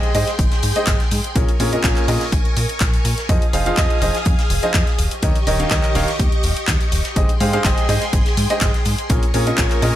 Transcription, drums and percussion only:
0.03 closed hi-hat soft
0.15 closed hi-hat medium
0.15 open hi-hat loud
0.27 snare soft
0.27 closed hi-hat soft
0.39 kick loud
0.39 closed hi-hat medium
0.52 snare medium
0.52 closed hi-hat soft
0.63 closed hi-hat medium
0.63 open hi-hat loud
0.76 closed hi-hat medium
0.87 kick loud
0.87 snare loud
0.87 clap loud
0.87 closed hi-hat medium
1.00 snare medium
1.00 closed hi-hat soft
1.11 closed hi-hat medium
1.11 open hi-hat loud
1.24 closed hi-hat soft
1.35 kick loud
1.35 closed hi-hat medium
1.49 closed hi-hat soft
1.60 closed hi-hat medium
1.60 open hi-hat loud
1.73 closed hi-hat soft
1.84 kick loud
1.84 snare loud
1.84 clap loud
1.84 closed hi-hat medium
1.97 clap soft
1.97 closed hi-hat soft
2.08 open hi-hat medium
2.08 open hi-hat loud
2.21 snare soft
2.21 closed hi-hat soft
2.32 kick loud
2.32 closed hi-hat medium
2.45 closed hi-hat soft
2.57 closed hi-hat medium
2.57 open hi-hat loud
2.69 closed hi-hat soft
2.80 kick loud
2.80 snare loud
2.80 clap loud
2.80 closed hi-hat medium
2.94 closed hi-hat soft
3.05 closed hi-hat medium
3.05 open hi-hat loud
3.18 snare soft
3.18 closed hi-hat soft
3.29 kick loud
3.29 closed hi-hat medium
3.42 closed hi-hat soft
3.53 closed hi-hat medium
3.53 open hi-hat loud
3.66 closed hi-hat soft
3.77 kick loud
3.77 snare loud
3.77 clap loud
3.77 closed hi-hat medium
3.90 closed hi-hat soft
4.02 closed hi-hat medium
4.02 open hi-hat loud
4.15 snare soft
4.15 closed hi-hat soft
4.25 kick loud
4.25 closed hi-hat medium
4.39 snare medium
4.39 closed hi-hat soft
4.50 closed hi-hat medium
4.50 open hi-hat loud
4.63 closed hi-hat soft
4.74 kick loud
4.74 snare loud
4.74 clap loud
4.74 closed hi-hat medium
4.87 snare medium
4.87 closed hi-hat soft
4.99 closed hi-hat medium
4.99 open hi-hat loud
5.11 closed hi-hat medium
5.22 kick loud
5.22 closed hi-hat medium
5.36 closed hi-hat soft
5.47 closed hi-hat medium
5.47 open hi-hat loud
5.60 closed hi-hat medium
5.71 kick loud
5.71 snare loud
5.71 clap loud
5.71 closed hi-hat medium
5.84 clap soft
5.84 closed hi-hat soft
5.95 open hi-hat medium
5.95 open hi-hat loud
6.08 snare soft
6.08 closed hi-hat soft
6.19 kick loud
6.19 closed hi-hat medium
6.32 closed hi-hat soft
6.43 closed hi-hat medium
6.43 open hi-hat loud
6.57 closed hi-hat medium
6.68 kick medium
6.68 snare loud
6.68 clap loud
6.68 closed hi-hat medium
6.81 closed hi-hat soft
6.92 closed hi-hat medium
6.92 open hi-hat loud
7.04 snare soft
7.04 closed hi-hat medium
7.16 kick loud
7.16 closed hi-hat medium
7.29 closed hi-hat soft
7.40 closed hi-hat medium
7.40 open hi-hat loud
7.53 closed hi-hat medium
7.64 kick loud
7.64 snare loud
7.64 clap loud
7.64 closed hi-hat medium
7.78 closed hi-hat soft
7.89 closed hi-hat medium
7.89 open hi-hat medium
8.02 snare soft
8.02 closed hi-hat soft
8.13 kick loud
8.13 closed hi-hat medium
8.26 snare medium
8.26 closed hi-hat soft
8.37 closed hi-hat medium
8.37 open hi-hat loud
8.50 closed hi-hat medium
8.61 kick medium
8.61 snare loud
8.61 clap loud
8.61 closed hi-hat medium
8.74 snare medium
8.74 closed hi-hat soft
8.85 closed hi-hat medium
8.85 open hi-hat loud
8.98 closed hi-hat medium
9.10 kick loud
9.10 closed hi-hat medium
9.23 closed hi-hat soft
9.34 closed hi-hat medium
9.34 open hi-hat medium
9.47 closed hi-hat medium
9.58 kick loud
9.58 snare loud
9.58 clap loud
9.58 closed hi-hat medium
9.71 clap soft
9.71 closed hi-hat soft
9.82 open hi-hat loud
9.82 open hi-hat medium

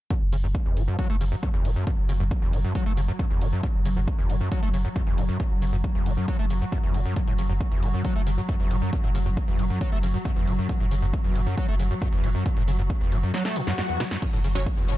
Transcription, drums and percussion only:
0.11 kick loud
0.33 open hi-hat loud
0.55 kick loud
0.77 open hi-hat medium
0.99 kick loud
1.21 open hi-hat loud
1.43 kick loud
1.65 open hi-hat medium
1.87 kick loud
2.09 open hi-hat loud
2.31 kick loud
2.53 open hi-hat medium
2.75 kick loud
2.97 open hi-hat loud
3.19 kick loud
3.41 open hi-hat medium
3.63 kick loud
3.85 open hi-hat loud
4.08 kick loud
4.30 open hi-hat medium
4.52 kick loud
4.74 open hi-hat loud
4.96 kick loud
5.18 open hi-hat medium
5.40 kick loud
5.62 open hi-hat loud
5.84 kick loud
6.06 open hi-hat medium
6.28 kick loud
6.50 open hi-hat loud
6.72 kick loud
6.94 open hi-hat medium
7.16 kick loud
7.38 open hi-hat loud
7.61 kick loud
7.83 open hi-hat medium
8.05 kick loud
8.27 open hi-hat loud
8.49 kick loud
8.71 open hi-hat medium
8.93 kick loud
9.15 open hi-hat loud
9.37 kick loud
9.59 open hi-hat medium
9.81 kick loud
10.03 open hi-hat loud
10.25 kick loud
10.47 open hi-hat medium
10.69 kick loud
10.91 open hi-hat loud
11.13 kick loud
11.36 open hi-hat medium
11.58 kick loud
11.80 open hi-hat medium
12.02 kick loud
12.24 open hi-hat medium
12.46 kick loud
12.68 open hi-hat loud
12.90 kick loud
13.12 open hi-hat medium
13.34 snare medium
13.45 snare medium
13.56 open hi-hat loud
13.67 snare medium
13.78 snare medium
14.00 snare medium
14.00 open hi-hat medium
14.11 snare medium
14.22 kick loud
14.22 closed hi-hat medium
14.22 crash medium
14.44 open hi-hat loud
14.55 closed hi-hat medium
14.66 kick loud
14.66 closed hi-hat medium
14.88 open hi-hat medium

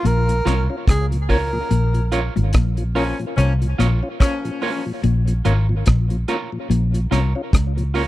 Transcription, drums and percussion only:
0.05 closed hi-hat medium
0.29 closed hi-hat medium
0.47 cross-stick medium
0.47 closed hi-hat medium
0.88 kick loud
0.88 cross-stick loud
0.88 closed hi-hat loud
1.12 closed hi-hat medium
1.29 kick medium
1.29 open hi-hat medium
1.71 closed hi-hat medium
1.94 closed hi-hat medium
2.12 closed hi-hat medium
2.36 closed hi-hat soft
2.53 kick loud
2.53 cross-stick loud
2.53 closed hi-hat medium
2.77 closed hi-hat medium
2.96 open hi-hat medium
3.19 closed hi-hat soft
3.38 closed hi-hat medium
3.62 closed hi-hat soft
3.80 cross-stick medium
3.80 closed hi-hat medium
4.20 kick loud
4.20 cross-stick loud
4.20 closed hi-hat loud
4.45 closed hi-hat medium
4.62 open hi-hat medium
5.04 closed hi-hat medium
5.27 closed hi-hat medium
5.45 closed hi-hat medium
5.86 kick loud
5.86 cross-stick loud
5.86 closed hi-hat medium
6.10 closed hi-hat medium
6.28 closed hi-hat medium
6.71 closed hi-hat medium
6.94 closed hi-hat medium
7.12 cross-stick medium
7.12 closed hi-hat medium
7.53 kick loud
7.53 cross-stick loud
7.53 closed hi-hat loud
7.78 closed hi-hat medium
7.95 open hi-hat medium

